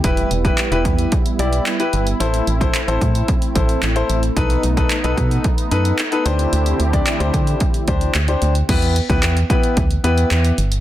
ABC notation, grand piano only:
X:1
M:4/4
L:1/16
Q:1/4=111
K:Em
V:1 name="Grand piano"
[EGB]2 z [EGB] z [EGB]3 z2 [EGd]2 z [EGB]2 z | [EAc]2 z [EAc] z [EAc]3 z2 [EAc]2 z [EAc]2 z | [^DAB]2 z [DAB] z [DAB]3 z2 [DAB]2 z [DAB] [=DGc]2- | [DGc]2 z [DGd] z [DGc]3 z2 [DGc]2 z [DGc]2 z |
[B,EGB]2 z [B,EGB]2 z [B,EGB]2 z2 [B,EGB]4 z2 |]